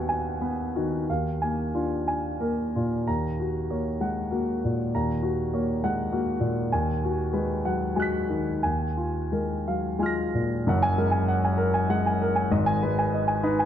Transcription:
Already playing: D#2 B3 F#4 F#5 G#5
0.09 G#5
0.41 B3 B4
0.76 D#3 F#4
1.09 D#2 F5
1.42 A#3 G#5
1.75 D4 F4
2.08 G#5
2.40 A#3 A#4
2.76 A#2 F4
3.07 D#2 A#5
3.40 F#4
3.70 A#3 C#5
4.00 G#3 F#5
4.31 A#3 F#4
4.65 A#2
4.95 D#2 A#5
5.23 F#4
5.54 A#3 C#5
5.84 G#3 F#5
6.12 A#3 F#4
6.40 A#2
6.72 D#2 G#5
7.05 F#4
7.33 G#3 B4
7.65 F#3 F#5
7.96 G#3 F#4 G#5 F#6
8.02 B6
8.29 D#3
8.63 D#2 G#5
8.97 F4
9.32 G#3 A#4
9.67 F#3 F5
9.99 G#3 F4 G#5 F6
10.06 A#6
10.34 A#2
10.67 F#1 F#2 F#5
10.82 G#5
10.98 G#3 A#4
11.11 G#5
11.28 F#5
11.44 G#5
11.57 A#4
11.74 G#5
11.90 G#3 F#5
12.06 G#5
12.22 A#4
12.36 G#5
12.51 G#1 G#2 D#5
12.66 G#5
12.82 G#3 B4
12.99 G#5
13.14 D#5
13.28 G#5
13.43 D#4 B4
13.59 G#5

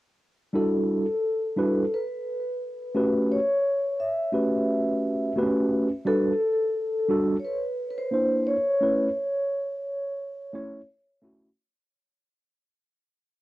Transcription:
0.53 G3 D4 E4 F#4 A4
1.56 G3 D4 E4 F#4 B4
1.94 B4
2.95 A3 C#4 F#4 G4 B4
3.32 C#5
4.00 E5
4.32 A3 C#4 F#4 G4 B4
5.36 A3 B3 F#4 G4 B4
5.43 C#4
6.05 G3 D4 F#4 A4 B4
7.08 G3 D4 F#4 A4
7.40 C#5
7.45 B4
7.90 B4
7.98 C5
8.11 A#3 D4 E4 C5
8.47 C#5
8.81 A3 C#4 E4 B4
10.53 A3 C#4 E4 C#5
11.22 A3 C#4 E4 F#4

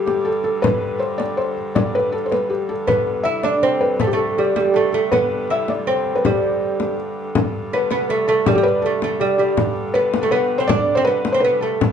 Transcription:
Already playing: G2 D3
0.06 G4, frame drum
0.25 A4, frame drum
0.44 A4, frame drum
0.62 B4, frame drum
0.83 frame drum
1.00 C5, frame drum
1.18 D5, frame drum
1.37 C5, frame drum
1.57 frame drum
1.75 D5, frame drum
1.95 B4
2.12 A4
2.26 C5
2.32 B4, frame drum
2.49 G4, frame drum
2.69 A4, frame drum
2.87 G2 D3 B3 B4, frame drum
3.07 frame drum
3.23 E4 E5, frame drum
3.43 D4 D5, frame drum
3.63 C4 C5, frame drum
3.81 B4, frame drum
4.00 A3 A4, frame drum
4.07 G4
4.13 A3 A4
4.19 frame drum
4.38 G3 G4, frame drum
4.56 G3 G4, frame drum
4.74 A3 A4, frame drum
4.92 A3 A4, frame drum
5.12 B3 B4, frame drum
5.31 frame drum
5.50 E4 E5, frame drum
5.68 D5, frame drum
5.87 C4 C5, frame drum
6.06 frame drum
6.15 B4
6.25 G3 G4, frame drum
6.43 frame drum
6.61 frame drum
6.80 frame drum
7.35 G2 D3, frame drum
7.54 frame drum
7.73 B3 B4, frame drum
7.91 B3, frame drum
8.09 A3 A4, frame drum
8.28 A3 A4
8.46 G3 G4 A4, frame drum
8.55 G3 G4
8.63 B4, frame drum
8.82 A3 A4, frame drum
9.02 A3, frame drum
9.20 G3 G4, frame drum
9.38 G3 G4
9.57 frame drum
9.77 frame drum
9.94 B3 B4, frame drum
10.14 frame drum
10.22 A3 A4
10.31 B3 B4, frame drum
10.58 C4 C5
10.67 D4 D5, frame drum
10.95 C4 C5
11.05 B3 B4
11.25 frame drum
11.32 C4 C5
11.40 B4, frame drum
11.45 B3
11.61 A3 A4
11.81 G2 D3, frame drum

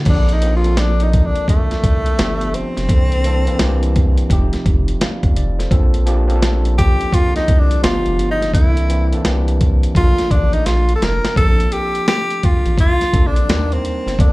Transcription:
0.05 A#1 F3 A#3 C4 D4 A4, kick, closed hi-hat, crash
0.10 D4
0.29 closed hi-hat
0.33 D#4
0.42 F3 A#3 C4 D4 A#4, closed hi-hat
0.56 F4
0.64 F3 A#3 C4 D4 A4, closed hi-hat
0.77 D4, snare, closed hi-hat
1.00 D#4, closed hi-hat
1.13 kick, closed hi-hat
1.26 D4
1.35 closed hi-hat
1.48 A3, kick, closed hi-hat
1.71 C2, snare, closed hi-hat
1.84 C2, kick, closed hi-hat
2.06 closed hi-hat
2.18 G1 F3 A3 B3 D4 G4, snare, closed hi-hat
2.41 closed hi-hat
2.54 F1 C4, closed hi-hat
2.77 F1, snare, closed hi-hat
2.89 C2 E3 A#3 C4 D4 A4, kick, closed hi-hat
3.12 closed hi-hat
3.24 E3 A#3 C4 D4 A4, closed hi-hat
3.47 E3 A#3 C4 D4 A4, closed hi-hat
3.59 C2 E3 A#3 C4 D4 F4, snare, closed hi-hat
3.68 G4
3.83 closed hi-hat
3.96 kick, closed hi-hat
4.17 closed hi-hat
4.30 F1 F3 A3 C4 D#4 G4, kick, closed hi-hat
4.53 F1, snare, closed hi-hat
4.66 F1, kick, closed hi-hat
4.88 closed hi-hat
5.01 D5 F5, snare, closed hi-hat
5.23 G1, kick, closed hi-hat
5.36 F1 D5, closed hi-hat
5.59 A4 C5, snare, closed hi-hat
5.70 A#1 F3 A#3 C4 D4 A4, kick, closed hi-hat
5.94 closed hi-hat
6.06 F3 A#3 C4 D4 G4, closed hi-hat
6.28 F3 A#3 C4 C#4 A4, closed hi-hat
6.36 D4
6.42 snare, closed hi-hat
6.65 closed hi-hat
6.78 G4, kick, closed hi-hat
7.01 closed hi-hat
7.13 F4, kick, closed hi-hat
7.36 C2 D#4, snare, closed hi-hat
7.48 C2, kick, closed hi-hat
7.60 D4
7.71 closed hi-hat
7.83 G1 F3 A3 B3 D4 F4 G4, snare, closed hi-hat
8.06 F1, closed hi-hat
8.19 G1, closed hi-hat
8.31 D#4
8.42 snare, closed hi-hat
8.54 C2 E3 A#3 C4 D4 E4 A4, kick, closed hi-hat
8.77 closed hi-hat
8.89 E3 A#3 C4 D4 E4, closed hi-hat
9.12 E3 A#3 C4 D4 A4, closed hi-hat
9.25 C2 E3 A#3 C4 D4 F#4, snare, closed hi-hat
9.34 G4
9.48 closed hi-hat
9.61 kick, closed hi-hat
9.83 closed hi-hat
9.95 A#1 F3 A3 A#3 D4 F4 A4, kick, closed hi-hat
10.18 A1, snare, closed hi-hat
10.31 A1 D4, kick, closed hi-hat
10.53 D#4, closed hi-hat
10.66 A#1 F4, snare, closed hi-hat
10.89 closed hi-hat
10.96 A4
11.02 F1 A#4, snare, closed hi-hat
11.25 snare, closed hi-hat
11.36 A#1 F3 A#3 C4 D4 G#4 A4, kick, closed hi-hat
11.45 A4
11.60 closed hi-hat
11.72 G4, closed hi-hat
11.95 closed hi-hat
12.08 G4, snare, closed hi-hat
12.30 closed hi-hat
12.43 A1 F4, kick, closed hi-hat
12.66 A1, closed hi-hat
12.78 F4, kick, closed hi-hat
13.01 snare, closed hi-hat
13.13 A#1 F3 A#3 C4 D4 A4, kick, closed hi-hat
13.27 D4
13.36 closed hi-hat
13.48 D#2 F#3 A#3 D4 D#4 A#4, snare, closed hi-hat
13.55 G3
13.72 C4, closed hi-hat
13.85 closed hi-hat
14.07 G1, snare, closed hi-hat
14.19 C2 E3 A#3 C4 D4 A4, kick, closed hi-hat

